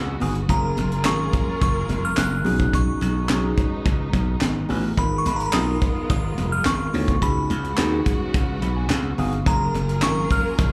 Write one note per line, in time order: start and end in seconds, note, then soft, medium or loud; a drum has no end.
0.00 0.15 C#2 medium
0.00 0.47 C#3 medium
0.00 0.45 G#3 medium
0.00 0.47 B3 medium
0.00 0.47 F#4 loud
0.20 0.43 G1 medium
0.20 0.36 B3 medium
0.20 0.36 D#4 medium
0.20 0.36 F#4 medium
0.20 0.36 G#4 loud
0.20 open hi-hat medium
0.20 high conga medium
0.35 closed hi-hat medium
0.49 0.71 F#1 loud
0.49 2.43 F#3 medium
0.49 0.79 A#3 medium
0.49 0.79 C#4 medium
0.49 2.43 F4 medium
0.49 0.79 F4 medium
0.49 2.43 G#4 medium
0.49 0.79 G#4 medium
0.49 2.43 A#4 loud
0.49 1.02 A#5 medium
0.49 kick medium
0.49 closed hi-hat medium
0.49 muted conga soft
0.77 1.05 F#1 loud
0.77 closed hi-hat medium
0.77 muted conga medium
0.92 closed hi-hat medium
1.04 1.27 G#1 loud
1.04 1.64 A#3 medium
1.04 1.64 C#4 medium
1.04 1.64 F4 medium
1.04 1.65 G#4 loud
1.04 1.61 C#6 medium
1.04 snare loud
1.04 clap loud
1.04 closed hi-hat medium
1.04 high conga medium
1.33 kick loud
1.33 closed hi-hat medium
1.33 low conga medium
1.61 1.83 F#1 medium
1.61 2.05 C#6 medium
1.61 kick loud
1.61 closed hi-hat medium
1.89 2.11 F1 medium
1.89 closed hi-hat medium
1.89 muted conga medium
1.89 low conga medium
2.05 2.11 F6 loud
2.17 2.45 F#1 loud
2.17 2.76 F#6 loud
2.17 snare loud
2.17 clap medium
2.17 closed hi-hat loud
2.17 high conga medium
2.45 2.89 B1 medium
2.45 9.42 G#3 medium
2.45 4.95 B3 medium
2.45 3.12 C#4 medium
2.45 3.13 D#4 medium
2.45 4.95 D#4 medium
2.45 3.13 F#4 medium
2.45 3.13 G#4 medium
2.45 open hi-hat medium
2.45 high conga medium
2.60 kick medium
2.60 closed hi-hat medium
2.73 3.26 C#6 medium
2.73 kick loud
2.73 closed hi-hat medium
2.73 muted conga medium
3.01 3.23 B1 loud
3.01 closed hi-hat medium
3.01 muted conga medium
3.29 3.51 B1 medium
3.29 3.88 C#4 medium
3.29 3.88 D#4 medium
3.29 3.88 F#4 medium
3.29 3.88 G#4 medium
3.29 snare loud
3.29 clap medium
3.29 closed hi-hat medium
3.29 high conga medium
3.57 kick loud
3.57 closed hi-hat medium
3.57 low conga medium
3.85 4.07 C#2 loud
3.85 kick loud
3.85 closed hi-hat medium
3.85 muted conga soft
3.85 low conga medium
4.13 4.35 B1 medium
4.13 kick loud
4.13 closed hi-hat medium
4.13 muted conga medium
4.41 4.63 G#1 medium
4.41 snare loud
4.41 clap medium
4.41 closed hi-hat medium
4.41 high conga medium
4.69 4.91 A1 medium
4.69 4.84 C#4 medium
4.69 4.84 D#4 medium
4.69 4.84 F#4 medium
4.69 4.84 B4 medium
4.69 open hi-hat medium
4.69 high conga medium
4.97 5.19 G#1 loud
4.97 5.27 B3 medium
4.97 7.20 B3 medium
4.97 5.27 D#4 medium
4.97 7.20 F4 medium
4.97 5.27 F4 medium
4.97 7.20 A#4 medium
4.97 5.27 A#4 medium
4.97 5.18 B5 medium
4.97 kick medium
4.97 closed hi-hat medium
4.97 muted conga soft
5.18 5.27 C#6 medium
5.25 5.47 G#1 medium
5.25 5.36 B5 medium
5.25 closed hi-hat medium
5.25 muted conga medium
5.36 5.45 A#5 medium
5.36 closed hi-hat medium
5.46 5.54 B5 medium
5.53 5.75 B1 medium
5.53 6.12 B3 medium
5.53 6.13 D#4 medium
5.53 6.13 F4 medium
5.53 6.13 A#4 medium
5.53 6.06 D#6 medium
5.53 snare loud
5.53 clap loud
5.53 closed hi-hat medium
5.53 high conga medium
5.81 kick medium
5.81 closed hi-hat medium
5.81 low conga medium
6.09 6.32 G#1 medium
6.09 6.49 D#6 loud
6.09 kick loud
6.09 closed hi-hat medium
6.09 muted conga soft
6.38 6.60 F1 medium
6.38 closed hi-hat medium
6.38 muted conga soft
6.38 low conga medium
6.52 6.67 F6 loud
6.65 6.88 G#1 loud
6.65 7.18 C#6 loud
6.65 snare loud
6.65 clap medium
6.65 closed hi-hat loud
6.65 high conga medium
6.94 7.16 D2 loud
6.94 7.09 B3 medium
6.94 7.09 D#4 medium
6.94 7.09 F4 medium
6.94 7.09 C#5 medium
6.94 open hi-hat medium
6.94 high conga medium
7.08 kick medium
7.08 closed hi-hat medium
7.22 7.44 C#2 loud
7.22 9.44 C#3 medium
7.22 7.51 B3 medium
7.22 9.44 B3 medium
7.22 7.51 D#4 medium
7.22 7.52 F#4 medium
7.22 9.44 F#4 loud
7.22 7.52 G#4 medium
7.22 7.74 B5 medium
7.22 kick loud
7.22 closed hi-hat loud
7.22 muted conga medium
7.50 7.72 C#2 loud
7.50 closed hi-hat medium
7.50 muted conga medium
7.64 closed hi-hat medium
7.77 8.00 D#2 loud
7.77 8.37 B3 medium
7.77 8.37 D#4 medium
7.77 8.37 F#4 medium
7.77 8.37 G#4 medium
7.77 snare loud
7.77 clap loud
7.77 closed hi-hat medium
7.77 high conga medium
8.06 kick medium
8.06 closed hi-hat medium
8.06 low conga medium
8.34 8.56 C#2 loud
8.34 kick loud
8.34 closed hi-hat medium
8.34 muted conga soft
8.34 low conga medium
8.62 8.84 B1 loud
8.62 8.75 B5 medium
8.62 closed hi-hat medium
8.62 muted conga medium
8.77 8.89 G#5 medium
8.89 9.12 C#2 medium
8.89 9.16 F#5 medium
8.89 snare loud
8.89 clap medium
8.89 closed hi-hat medium
8.89 high conga medium
9.18 9.40 G1 medium
9.18 9.33 B3 medium
9.18 9.33 D#4 medium
9.18 9.33 F#4 medium
9.18 9.33 G#4 loud
9.18 9.45 F5 medium
9.18 open hi-hat medium
9.18 high conga medium
9.32 closed hi-hat medium
9.46 9.68 F#1 loud
9.46 10.72 F#3 loud
9.46 9.76 A#3 medium
9.46 9.76 C#4 medium
9.46 10.72 F4 medium
9.46 9.76 F4 medium
9.46 10.72 G#4 medium
9.46 9.76 G#4 medium
9.46 10.72 A#4 loud
9.46 10.05 A#5 loud
9.46 kick loud
9.46 closed hi-hat medium
9.46 muted conga medium
9.74 10.03 F#1 loud
9.74 closed hi-hat medium
9.74 muted conga soft
9.89 closed hi-hat medium
10.02 10.24 G#1 medium
10.02 10.61 A#3 medium
10.02 10.61 C#4 medium
10.02 10.61 F4 medium
10.02 10.62 A#4 medium
10.02 10.29 C#6 loud
10.02 snare loud
10.02 clap loud
10.02 closed hi-hat medium
10.02 high conga medium
10.30 10.72 F6 loud
10.30 kick medium
10.30 closed hi-hat medium
10.30 low conga medium
10.58 10.72 F#1 medium
10.58 kick loud
10.58 closed hi-hat loud
10.58 muted conga soft